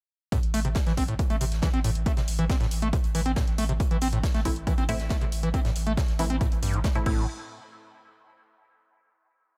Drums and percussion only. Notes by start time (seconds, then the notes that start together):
0.32 kick, closed hi-hat
0.43 closed hi-hat
0.54 closed hi-hat, open hi-hat
0.65 closed hi-hat
0.75 kick, snare, closed hi-hat
0.87 snare, closed hi-hat
0.97 kick, closed hi-hat, open hi-hat
1.08 closed hi-hat
1.19 kick, closed hi-hat
1.30 closed hi-hat
1.41 closed hi-hat, open hi-hat
1.52 snare, closed hi-hat
1.62 kick, snare, closed hi-hat
1.74 closed hi-hat
1.84 closed hi-hat, open hi-hat
1.95 closed hi-hat
2.06 kick, closed hi-hat
2.17 snare, closed hi-hat
2.28 closed hi-hat, open hi-hat
2.39 closed hi-hat
2.49 kick, snare, closed hi-hat
2.61 snare, closed hi-hat
2.71 closed hi-hat, open hi-hat
2.82 closed hi-hat
2.93 kick, closed hi-hat
3.04 closed hi-hat
3.15 closed hi-hat, open hi-hat
3.26 closed hi-hat
3.36 kick, snare, closed hi-hat
3.48 closed hi-hat
3.58 closed hi-hat, open hi-hat
3.69 closed hi-hat
3.80 kick, closed hi-hat
3.91 closed hi-hat
4.01 closed hi-hat, open hi-hat
4.13 closed hi-hat
4.24 kick, snare, closed hi-hat
4.34 snare, closed hi-hat
4.45 kick, closed hi-hat, open hi-hat
4.56 closed hi-hat
4.67 kick, closed hi-hat
4.78 closed hi-hat
4.89 closed hi-hat, open hi-hat
4.99 snare, closed hi-hat
5.09 kick, snare, closed hi-hat
5.21 closed hi-hat
5.32 closed hi-hat, open hi-hat
5.43 closed hi-hat
5.54 kick, closed hi-hat
5.65 snare, closed hi-hat
5.76 closed hi-hat, open hi-hat
5.87 closed hi-hat
5.97 kick, snare, closed hi-hat
6.08 snare, closed hi-hat
6.19 closed hi-hat, open hi-hat
6.30 closed hi-hat
6.41 kick, closed hi-hat
6.52 closed hi-hat
6.62 closed hi-hat, open hi-hat
6.74 closed hi-hat
6.84 kick, snare, closed hi-hat
6.95 closed hi-hat
7.06 kick, crash